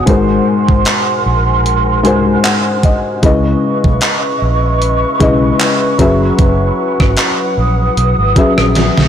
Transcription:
Already playing: F#5 G#5
0.06 G#1 G#2 G#3 F#4 A#4 C5 C6, kick, closed hi-hat
0.69 G#1, kick
0.85 clap, closed hi-hat
1.26 A#1
1.66 closed hi-hat
2.03 C2 G#2 G#3 F#4 A#4 C5 G#5, closed hi-hat
2.44 F#5, clap, closed hi-hat
2.83 D#5, kick, closed hi-hat
3.22 C#2 C#3 G#3 E4 B4 D#5 C#6, kick, closed hi-hat
3.84 B1, kick
4.01 clap, closed hi-hat
4.42 A#1
4.82 closed hi-hat
5.19 B1 C#3 G#3 E4 B4 D#5, kick, closed hi-hat
5.60 clap, closed hi-hat
5.98 F#1 F#3 C#4 G#4 B4 E5 F#5, kick, closed hi-hat
6.39 F#1, kick, closed hi-hat
7.00 G#1, kick, cross-stick
7.17 clap, closed hi-hat
7.57 A#1 D#6
7.97 B1, closed hi-hat
8.19 G#1
8.36 F#3 C#4 G#4 B4 E5, kick, closed hi-hat
8.58 A#1, cross-stick
8.75 snare, closed hi-hat
8.98 B1, snare

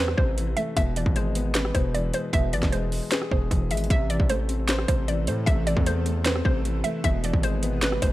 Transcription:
Already playing: E2 C3 E3 A3 C4
0.00 B4 C5
0.08 cross-stick
0.17 A1 C3 C5, kick
0.37 E3, closed hi-hat
0.57 A3 E5, closed hi-hat
0.77 E1 B2 E5, kick, closed hi-hat
0.96 E3 D5, closed hi-hat
1.06 G#1, kick
1.16 G#3 C5, closed hi-hat
1.35 B3, closed hi-hat
1.55 B4, snare, closed hi-hat
1.65 cross-stick
1.75 E1 B2 C5, kick, closed hi-hat
1.94 E3 D5, closed hi-hat
2.14 G#3 C5, closed hi-hat
2.33 E1 B2 E5, kick, closed hi-hat
2.53 G#1 E3 D5, closed hi-hat
2.63 E1, kick, snare
2.72 G#3 C5, closed hi-hat
2.92 open hi-hat
3.12 G#4 B4, snare, closed hi-hat
3.22 cross-stick
3.31 E1 B2 C5, kick
3.51 E1 E3, kick, closed hi-hat
3.71 G#1 G#3 E5, closed hi-hat
3.77 closed hi-hat
3.84 closed hi-hat
3.90 A1 C3 E3 A3 C4 A4 E5, kick, closed hi-hat
4.10 E3 D5, closed hi-hat
4.20 A1, kick
4.29 A3 C5, closed hi-hat
4.49 C4, closed hi-hat
4.68 B4 C5, snare, closed hi-hat
4.79 cross-stick
4.88 A1 C3 C5, kick, closed hi-hat
5.08 E3 D5, closed hi-hat
5.27 A2 A3 C5, closed hi-hat
5.46 A1 C3 E5, kick, closed hi-hat
5.67 E3 D5, closed hi-hat
5.77 E2, kick
5.86 A3 C5, closed hi-hat
6.06 C4, closed hi-hat
6.25 B4 C5, snare, closed hi-hat
6.36 cross-stick
6.45 A1 C3 C5, kick
6.65 E3, closed hi-hat
6.84 A3 E5, closed hi-hat
7.04 E1 B2 G#3 G#4 E5, kick, closed hi-hat
7.24 E3 D5, closed hi-hat
7.33 G#1, kick
7.43 G#3 C5, closed hi-hat
7.63 B3, closed hi-hat
7.82 B4, snare, closed hi-hat
7.92 cross-stick
8.02 E1 B2 C5, kick, closed hi-hat

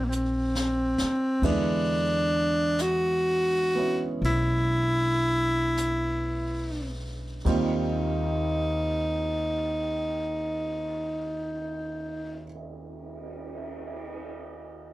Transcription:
Already playing: A#1 D#3 G3 C4 F4
0.05 A#3 C4
0.12 C4, hi-hat pedal
0.55 snare
0.98 muted upright bass stroke, snare
1.42 E2 D3 G#3 B3 D4 E4, brush sweep, kick, ride
2.79 F#4, brush sweep, snare, hi-hat pedal
3.75 B3 C#4 E4
4.22 B1 E4, brush sweep
5.77 brush sweep, snare, hi-hat pedal
7.45 D#2 D#3 G3 C4 F4, kick, ride
7.49 D#4
8.68 cymbal swell

